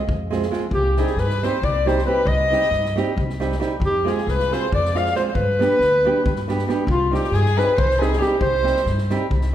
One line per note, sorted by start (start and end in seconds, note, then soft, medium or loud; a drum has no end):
0.07 0.46 F2 medium
0.07 kick medium
0.30 0.45 G#3 medium
0.30 0.46 C4 medium
0.30 0.46 F4 medium
0.30 0.46 G#4 medium
0.30 snare soft
0.42 snare soft
0.51 0.66 G#3 medium
0.51 0.66 C4 medium
0.51 0.66 F4 medium
0.51 0.67 G#4 medium
0.51 snare soft
0.71 0.99 C2 loud
0.71 1.00 G4 medium
0.71 1.01 G4 loud
0.71 kick medium
0.97 1.12 G3 medium
0.97 1.12 C4 medium
0.97 1.13 D#4 medium
0.97 1.13 G4 medium
0.97 1.21 G#4 medium
0.97 snare soft
1.07 snare soft
1.16 1.44 G2 medium
1.16 1.45 B4 loud
1.16 1.46 B4 medium
1.16 snare soft
1.30 snare soft
1.43 1.58 G3 medium
1.43 1.57 C4 medium
1.43 1.58 D#4 medium
1.43 1.59 G4 medium
1.43 1.66 C5 medium
1.43 snare soft
1.62 2.00 C2 medium
1.62 1.89 D5 medium
1.62 kick medium
1.86 2.00 G3 medium
1.86 2.01 C4 medium
1.86 2.01 D#4 medium
1.86 2.01 G4 medium
1.86 2.06 C5 medium
1.86 2.07 C5 medium
1.86 snare soft
1.98 snare soft
2.06 2.20 G3 medium
2.06 2.21 C4 medium
2.06 2.21 D#4 medium
2.06 2.21 G4 medium
2.06 2.29 B4 loud
2.06 2.28 B4 medium
2.25 2.53 C2 loud
2.25 2.97 D#5 medium
2.25 2.97 D#5 loud
2.25 kick medium
2.50 2.66 G3 medium
2.50 2.66 C4 medium
2.50 2.66 D#4 medium
2.50 2.67 G4 medium
2.50 snare soft
2.62 snare soft
2.71 2.99 G2 medium
2.71 snare soft
2.85 snare soft
2.96 3.11 G3 medium
2.96 3.12 C4 medium
2.96 3.12 D#4 medium
2.96 3.12 G4 medium
2.96 snare soft
3.17 3.55 C2 medium
3.17 kick medium
3.30 snare soft
3.40 3.55 G3 medium
3.40 3.55 C4 medium
3.40 3.55 D#4 medium
3.40 3.55 G4 medium
3.40 snare soft
3.52 snare soft
3.60 3.75 G3 medium
3.60 3.75 C4 medium
3.60 3.75 D#4 medium
3.60 3.75 G4 medium
3.60 snare soft
3.80 4.07 F2 loud
3.80 kick medium
3.85 4.10 G4 loud
3.85 4.13 G4 medium
4.05 4.20 G#3 medium
4.05 4.20 C4 medium
4.05 4.21 F4 medium
4.05 4.21 G#4 medium
4.05 4.31 G#4 medium
4.05 snare soft
4.12 4.32 G#4 medium
4.18 snare soft
4.27 4.54 C2 medium
4.27 4.55 B4 loud
4.27 snare soft
4.31 4.55 B4 loud
4.39 snare soft
4.51 4.66 G#3 medium
4.51 4.66 C4 medium
4.51 4.66 F4 medium
4.51 4.67 G#4 medium
4.51 4.73 C5 medium
4.51 snare soft
4.72 5.10 F2 medium
4.72 4.99 D5 medium
4.72 4.97 D5 medium
4.72 kick medium
4.85 snare soft
4.93 5.08 G#3 medium
4.93 5.09 C4 medium
4.93 5.09 F4 medium
4.93 5.10 G#4 medium
4.93 5.16 F5 medium
4.93 snare soft
4.97 5.16 F5 loud
5.06 snare soft
5.15 5.29 G#3 medium
5.15 5.29 C4 medium
5.15 5.30 F4 medium
5.15 5.30 G#4 medium
5.15 5.22 C5 loud
5.15 5.22 C5 medium
5.15 snare soft
5.29 5.36 C5 medium
5.29 5.37 C5 medium
5.35 5.62 G2 loud
5.35 6.48 B4 loud
5.35 6.49 B4 medium
5.35 kick medium
5.59 5.74 G3 medium
5.59 5.74 B3 medium
5.59 5.75 D4 medium
5.59 5.75 G4 medium
5.59 snare soft
5.79 6.07 D2 medium
5.79 snare soft
6.05 6.20 G3 medium
6.05 6.20 B3 medium
6.05 6.20 D4 medium
6.05 6.20 G4 medium
6.25 6.63 G2 medium
6.25 kick medium
6.36 snare soft
6.48 6.62 G3 medium
6.48 6.63 B3 medium
6.48 6.63 D4 medium
6.48 6.64 G4 medium
6.48 snare soft
6.58 snare soft
6.68 6.82 G3 medium
6.68 6.83 B3 medium
6.68 6.83 D4 medium
6.68 6.83 G4 medium
6.68 snare soft
6.87 7.15 C2 loud
6.87 7.12 F4 medium
6.87 kick medium
6.91 7.13 F4 medium
7.11 7.27 G3 medium
7.11 7.27 C4 medium
7.11 7.28 D#4 medium
7.11 7.28 G4 medium
7.11 7.35 G4 medium
7.11 7.36 G4 medium
7.11 snare soft
7.24 snare soft
7.31 7.59 G2 medium
7.31 7.59 G#4 loud
7.31 7.60 G#4 loud
7.31 snare soft
7.46 snare soft
7.57 7.72 G3 medium
7.57 7.72 C4 medium
7.57 7.73 D#4 medium
7.57 7.73 G4 medium
7.57 7.78 B4 medium
7.57 7.80 B4 medium
7.57 snare soft
7.77 8.15 C2 medium
7.77 8.00 C5 medium
7.77 8.03 C5 loud
7.77 kick loud
7.91 snare soft
7.98 8.15 G3 medium
7.98 8.15 C4 medium
7.98 8.15 D#4 medium
7.98 8.16 G4 medium
7.98 8.20 G#4 medium
7.98 8.23 G#4 medium
7.98 snare soft
8.13 snare soft
8.18 8.35 G3 medium
8.18 8.35 C4 medium
8.18 8.35 D#4 medium
8.18 8.40 G4 medium
8.18 8.41 G4 medium
8.18 8.36 G4 medium
8.18 snare soft
8.40 8.68 C2 medium
8.40 9.06 C5 medium
8.40 9.07 C5 loud
8.40 kick medium
8.63 8.79 G3 medium
8.63 8.79 C4 medium
8.63 8.80 D#4 medium
8.63 8.80 G4 medium
8.63 snare soft
8.76 snare soft
8.86 9.13 G2 loud
8.86 snare soft
8.98 snare soft
9.10 9.25 G3 medium
9.10 9.25 C4 medium
9.10 9.25 D#4 medium
9.10 9.26 G4 medium
9.10 snare soft
9.30 9.55 C2 medium
9.30 kick medium
9.41 snare soft